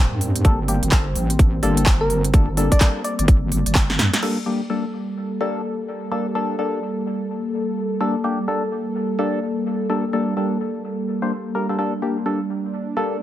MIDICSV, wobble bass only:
0, 0, Header, 1, 2, 480
1, 0, Start_track
1, 0, Key_signature, -2, "minor"
1, 0, Tempo, 472441
1, 454, Time_signature, 4, 2, 24, 8
1, 13437, End_track
2, 0, Start_track
2, 0, Title_t, "Wobble bass"
2, 0, Program_c, 0, 39
2, 121, Note_on_c, 0, 43, 98
2, 439, Note_off_c, 0, 43, 0
2, 454, Note_on_c, 0, 31, 99
2, 818, Note_off_c, 0, 31, 0
2, 841, Note_on_c, 0, 31, 99
2, 919, Note_off_c, 0, 31, 0
2, 934, Note_on_c, 0, 31, 97
2, 1159, Note_off_c, 0, 31, 0
2, 1174, Note_on_c, 0, 33, 94
2, 1639, Note_off_c, 0, 33, 0
2, 1654, Note_on_c, 0, 31, 99
2, 2119, Note_off_c, 0, 31, 0
2, 2134, Note_on_c, 0, 31, 96
2, 2498, Note_off_c, 0, 31, 0
2, 2521, Note_on_c, 0, 31, 97
2, 2737, Note_off_c, 0, 31, 0
2, 3241, Note_on_c, 0, 31, 100
2, 3559, Note_off_c, 0, 31, 0
2, 3574, Note_on_c, 0, 31, 99
2, 3698, Note_off_c, 0, 31, 0
2, 3721, Note_on_c, 0, 31, 97
2, 4039, Note_off_c, 0, 31, 0
2, 4054, Note_on_c, 0, 43, 98
2, 4178, Note_off_c, 0, 43, 0
2, 13437, End_track
0, 0, End_of_file